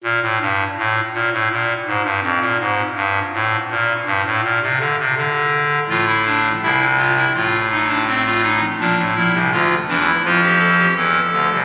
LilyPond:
\new Staff \with { instrumentName = "Pipe organ" } { \clef bass \time 4/4 \key f \mixolydian \tempo 4 = 82 << { bes,16 a,16 g,8 a,8 bes,16 a,16 bes,8 aes,16 g,16 f,16 bes,16 aes,8 | g,8 a,8 bes,8 g,16 a,16 bes,16 c16 d16 c16 d4 | f'16 e'16 d'8 e'8 f'16 e'16 f'8 ees'16 d'16 c'16 f'16 ees'8 | d'8 e'8 f'8 d'16 e'16 f'16 g'16 a'16 g'16 a'4 | } \\ { r1 | r1 | <a,, a,>4 <c, c>4 <a,, a,>2 | <bes,, bes,>16 <a,, a,>16 <bes,, bes,>16 <c, c>16 <d, d>8 <e, e>8 <f, f>4 <e, e>8 <d, d>16 <c, c>16 | } >> }